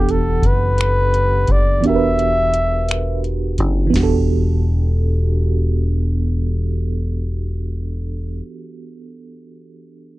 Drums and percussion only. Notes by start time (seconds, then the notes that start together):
0.09 closed hi-hat
0.42 kick, closed hi-hat
0.78 finger snap, closed hi-hat
1.14 closed hi-hat
1.47 kick, closed hi-hat
1.84 closed hi-hat
2.19 closed hi-hat
2.54 closed hi-hat
2.89 finger snap, closed hi-hat
3.24 closed hi-hat
3.58 kick, closed hi-hat
3.94 kick, snare, crash